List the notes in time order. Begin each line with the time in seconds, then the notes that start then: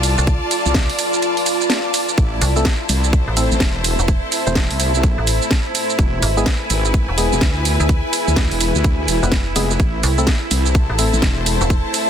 Already playing: C2 F4 A4 D5 A5
0.03 open hi-hat, ride, shaker
0.18 C2, shaker
0.27 B4, kick, ride, shaker
0.51 open hi-hat, ride, shaker
0.66 C2, shaker
0.74 kick, snare, ride, shaker
0.90 open hi-hat
0.99 open hi-hat, ride, shaker
1.14 shaker
1.22 ride, shaker
1.37 open hi-hat
1.46 open hi-hat, ride, shaker
1.61 shaker
1.70 snare, ride, shaker
1.94 open hi-hat, ride, shaker
2.09 shaker
2.18 A1 A3 E4 A4 C5 E5, kick, ride, shaker
2.42 C2, open hi-hat, ride, shaker
2.55 A3 C4 E4 A4 C5, shaker
2.65 kick, snare, ride, shaker
2.89 C2, open hi-hat, ride, shaker
3.04 shaker
3.13 kick, ride, shaker
3.28 A1
3.37 A3 C4 E4 A4, open hi-hat, ride, shaker
3.51 A1, shaker
3.60 E1, kick, snare, ride, shaker
3.84 open hi-hat, ride, shaker
3.99 E1, shaker
4.08 kick, ride, shaker
4.32 open hi-hat, ride, shaker
4.47 E1 A3 C4 E4 C5, shaker
4.55 kick, snare, ride, shaker
4.71 C2, open hi-hat
4.80 open hi-hat, ride, shaker
4.95 shaker
5.03 kick, ride, shaker
5.18 A1
5.27 open hi-hat, ride, shaker
5.42 shaker
5.51 kick, snare, ride, shaker
5.75 open hi-hat, ride, shaker
5.90 shaker
5.99 E1 E4 G#4 B4, kick, ride, shaker
6.20 G#1 B4, open hi-hat, ride, shaker
6.37 G#3 B3 E4 G#4, shaker
6.44 G#5, kick, snare, ride, shaker
6.70 G#1, open hi-hat, ride, shaker
6.85 shaker
6.94 kick, ride, shaker
7.09 E1
7.18 G#3 B3 E4 G#4, open hi-hat, ride, shaker
7.32 E1, shaker
7.41 D2, kick, snare, ride, shaker
7.65 open hi-hat, ride, shaker
7.80 D2, shaker
7.89 kick, ride, shaker
8.13 open hi-hat, ride, shaker
8.28 D2, shaker
8.36 kick, snare, ride, shaker
8.51 E1, open hi-hat
8.61 open hi-hat, ride, shaker
8.75 D2, shaker
8.84 kick, ride, shaker
9.08 E1, open hi-hat, ride, shaker
9.23 F1 G#3 B3 E4 B4, shaker
9.32 kick, snare, ride, shaker
9.56 F1 G#3 B3 E4 G#4, open hi-hat, ride, shaker
9.71 shaker
9.80 A1 A3 A4 C5 E5, kick, ride, shaker
9.95 C5
10.03 C2, open hi-hat, ride, shaker
10.18 A3 C4 E4 A4, shaker
10.27 kick, snare, ride, shaker
10.51 C2, open hi-hat, ride, shaker
10.66 shaker
10.71 A5, kick, ride
10.75 shaker
10.90 A1
10.99 A3 C4 E4 A4, open hi-hat, ride, shaker
11.13 A1, shaker
11.22 E1, kick, snare, ride, shaker
11.46 open hi-hat, ride, shaker
11.61 E1, shaker
11.70 D5, kick, ride, shaker
11.94 open hi-hat, ride, shaker